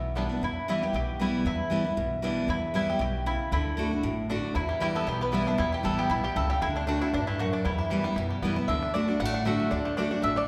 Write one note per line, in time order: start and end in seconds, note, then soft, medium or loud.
0.00 0.27 B1 medium
0.00 0.40 B2 medium
0.00 0.13 E5 medium
0.15 0.29 E3 medium
0.15 0.22 G3 medium
0.15 0.30 G3 medium
0.15 0.23 B3 medium
0.15 0.30 B3 medium
0.15 0.44 D4 medium
0.15 0.23 E4 medium
0.15 0.28 E4 medium
0.29 0.42 B3 medium
0.29 0.41 E4 medium
0.42 0.78 E2 medium
0.42 0.92 E2 medium
0.42 0.67 E4 medium
0.68 0.82 E3 medium
0.68 0.82 G3 loud
0.68 0.82 B3 medium
0.68 0.81 E4 loud
0.68 0.83 E4 loud
0.82 0.95 B3 medium
0.82 0.94 E4 medium
0.82 0.94 G4 medium
0.93 1.30 B1 medium
0.93 1.43 B2 medium
0.93 1.21 G4 medium
1.19 1.44 E3 medium
1.19 1.45 G3 medium
1.19 1.45 B3 medium
1.19 1.45 E4 medium
1.45 1.82 E2 medium
1.45 1.95 E2 medium
1.45 2.20 E4 loud
1.70 1.84 E3 medium
1.70 1.85 G3 loud
1.70 1.85 B3 medium
1.70 1.83 E4 medium
1.85 1.97 B3 medium
1.85 1.96 E4 medium
1.97 2.34 B1 medium
1.97 2.46 B2 medium
2.22 2.47 E3 medium
2.22 2.47 G3 medium
2.22 2.48 B3 medium
2.22 2.48 D4 medium
2.22 2.48 E4 loud
2.48 2.85 E2 loud
2.48 2.98 E2 medium
2.48 2.74 E4 loud
2.74 2.99 E3 loud
2.74 2.99 G3 medium
2.74 2.99 B3 medium
2.74 2.89 E4 medium
2.74 3.00 E4 loud
2.90 3.00 G4 medium
2.99 3.37 B1 medium
2.99 3.24 B2 medium
2.99 3.26 G4 medium
3.26 3.51 C#3 medium
3.26 3.52 E4 medium
3.52 3.89 D2 loud
3.52 3.76 D3 medium
3.52 4.29 E4 loud
3.77 3.91 D3 medium
3.77 3.91 A3 medium
3.77 3.92 D4 medium
3.77 3.89 F#4 medium
3.91 4.04 D4 medium
3.91 4.03 F#4 medium
4.03 4.40 A1 medium
4.03 4.53 A2 loud
4.29 4.54 D3 medium
4.29 4.55 A3 medium
4.29 4.54 D4 medium
4.29 4.55 D4 loud
4.29 4.55 F#4 medium
4.55 5.05 E2 medium
4.55 4.92 E2 loud
4.55 4.92 E4 medium
4.55 4.80 E4 loud
4.69 5.04 G3 medium
4.80 5.05 E3 medium
4.80 5.06 G3 medium
4.80 5.06 B3 medium
4.80 4.87 E4 loud
4.80 5.06 E4 loud
4.80 5.18 G4 medium
4.95 5.31 B3 medium
4.95 5.07 A4 loud
5.07 5.44 B1 medium
5.07 5.56 B2 medium
5.07 5.44 E4 medium
5.07 5.22 G4 loud
5.21 5.57 G3 medium
5.21 5.33 B4 medium
5.32 5.46 E3 medium
5.32 5.46 G3 medium
5.32 5.70 B3 medium
5.32 5.47 B3 medium
5.32 5.47 E4 medium
5.32 5.46 E4 loud
5.47 5.59 B3 medium
5.47 5.59 D4 medium
5.47 5.71 E4 medium
5.47 5.58 E4 medium
5.58 6.08 E2 medium
5.58 5.77 E2 medium
5.58 5.83 G3 medium
5.58 5.72 E4 loud
5.72 6.08 E4 medium
5.72 5.79 G4 loud
5.83 6.06 A1 loud
5.83 6.09 E3 medium
5.83 6.21 G3 medium
5.83 6.09 G3 medium
5.83 6.09 B3 loud
5.83 6.10 E4 medium
5.83 5.99 A4 loud
5.99 6.34 B3 medium
5.99 6.10 G4 loud
6.10 6.32 B1 medium
6.10 6.35 B2 medium
6.10 6.35 E4 medium
6.10 6.24 E4 medium
6.24 6.49 G3 medium
6.24 6.37 G4 medium
6.36 6.58 C#2 loud
6.36 6.61 C#3 loud
6.36 6.61 E4 medium
6.36 6.49 A4 medium
6.50 6.62 G3 medium
6.50 6.62 G4 loud
6.62 6.99 D2 loud
6.62 6.86 D3 medium
6.62 6.86 D4 medium
6.62 6.75 E4 loud
6.76 7.11 A3 medium
6.76 6.87 D4 medium
6.87 7.01 D3 medium
6.87 7.01 A3 medium
6.87 7.00 D4 medium
6.87 7.01 D4 loud
6.87 7.02 D4 loud
6.87 7.00 F#4 loud
7.01 7.12 D4 medium
7.01 7.14 D4 medium
7.01 7.14 E4 medium
7.01 7.13 F#4 medium
7.13 7.50 A1 medium
7.13 7.39 G2 medium
7.13 7.38 D4 medium
7.13 7.27 D4 medium
7.27 7.63 A3 medium
7.27 7.39 E4 medium
7.39 7.64 F#2 medium
7.39 7.52 D4 medium
7.39 7.52 F#4 medium
7.53 7.65 D4 medium
7.53 7.64 D4 medium
7.65 8.02 E2 medium
7.65 8.14 E2 medium
7.65 8.02 G3 medium
7.65 8.39 E4 medium
7.78 8.14 E4 medium
7.90 8.28 E3 medium
7.90 8.04 E3 medium
7.90 8.05 G3 loud
7.90 8.05 B3 medium
7.90 8.04 E4 medium
8.04 8.29 G3 medium
8.04 8.18 B3 medium
8.04 8.16 E4 medium
8.16 8.38 F#2 medium
8.16 8.66 B2 medium
8.16 8.53 E4 medium
8.30 8.66 G3 medium
8.42 8.64 E2 medium
8.42 8.56 E3 medium
8.42 8.57 G3 medium
8.42 8.68 B3 medium
8.42 8.57 B3 medium
8.42 8.55 E4 medium
8.56 8.69 B3 medium
8.56 8.68 E4 medium
8.68 9.05 D2 medium
8.68 8.93 D3 medium
8.68 8.82 D4 medium
8.68 8.95 E5 loud
8.82 8.94 D4 medium
8.94 9.07 D3 medium
8.94 9.08 A3 loud
8.94 9.09 D4 medium
8.94 9.08 D4 medium
8.94 9.06 F#4 loud
8.94 9.21 D5 medium
9.08 9.34 D4 medium
9.08 9.20 D4 medium
9.08 9.19 F#4 medium
9.20 9.56 A1 medium
9.20 9.69 A2 loud
9.20 9.25 G3 medium
9.20 9.46 F#5 medium
9.25 9.46 A3 medium
9.34 9.46 D4 medium
9.45 9.70 D3 loud
9.45 9.70 A3 medium
9.45 9.71 D4 medium
9.45 9.71 D4 loud
9.45 9.71 F#4 loud
9.45 9.70 E5 medium
9.60 10.48 D3 medium
9.71 10.08 D2 medium
9.71 9.96 D3 medium
9.71 9.97 D4 medium
9.71 9.95 D5 medium
9.85 10.36 A3 medium
9.97 10.11 D3 medium
9.97 10.11 A3 medium
9.97 10.11 D4 medium
9.97 10.11 D4 loud
9.97 10.09 F#4 loud
9.97 10.24 D5 medium
10.11 10.22 D4 medium
10.11 10.23 D4 medium
10.11 10.22 F#4 medium
10.22 10.48 A1 medium
10.22 10.48 A2 loud
10.22 10.48 D4 medium
10.22 10.38 E5 medium
10.36 10.48 A3 medium
10.36 10.48 D5 medium